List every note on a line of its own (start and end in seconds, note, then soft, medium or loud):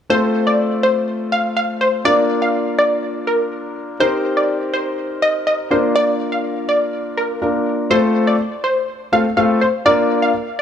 0.10 2.01 A3 medium
0.10 2.01 C4 medium
0.10 2.01 F4 medium
0.10 2.02 A4 medium
0.10 0.19 C5 loud
0.47 0.56 D5 medium
0.83 1.01 C5 medium
1.32 1.50 F5 medium
1.57 1.66 F5 medium
1.81 1.90 C5 medium
2.05 3.96 A#3 medium
2.05 3.96 D4 medium
2.05 3.97 F4 medium
2.05 3.97 A#4 medium
2.05 2.14 D5 loud
2.42 2.51 F5 medium
2.79 2.97 D5 medium
3.27 3.45 A#4 medium
4.00 5.67 C4 medium
4.00 5.68 D#4 medium
4.00 5.68 G4 medium
4.00 5.68 A#4 medium
4.00 4.09 C5 loud
4.37 4.46 D5 medium
4.74 4.92 C5 medium
5.22 5.40 D#5 medium
5.47 5.56 D#5 medium
5.71 7.38 A#3 medium
5.71 7.38 D4 medium
5.71 7.39 F4 medium
5.71 7.39 A#4 medium
5.71 5.80 C5 medium
5.96 6.05 D5 loud
6.32 6.41 F5 medium
6.69 6.87 D5 medium
7.17 7.36 A#4 medium
7.42 7.91 A#3 soft
7.42 7.91 D4 soft
7.42 7.89 F4 soft
7.42 7.91 A#4 medium
7.90 8.35 A3 medium
7.90 8.35 C4 medium
7.90 8.35 F4 medium
7.90 8.35 A4 medium
7.90 8.00 C5 loud
8.27 8.36 D5 medium
8.64 8.82 C5 medium
9.12 9.23 A3 medium
9.12 9.24 C4 medium
9.12 9.24 F4 medium
9.12 9.24 A4 medium
9.12 9.31 F5 medium
9.37 9.59 A3 medium
9.37 9.59 C4 medium
9.37 9.59 F4 medium
9.37 9.59 A4 medium
9.37 9.46 F5 medium
9.61 9.70 C5 medium
9.86 10.30 A#3 medium
9.86 10.30 D4 medium
9.86 10.30 F4 medium
9.86 10.30 A#4 medium
9.86 9.95 D5 loud
10.22 10.31 F5 medium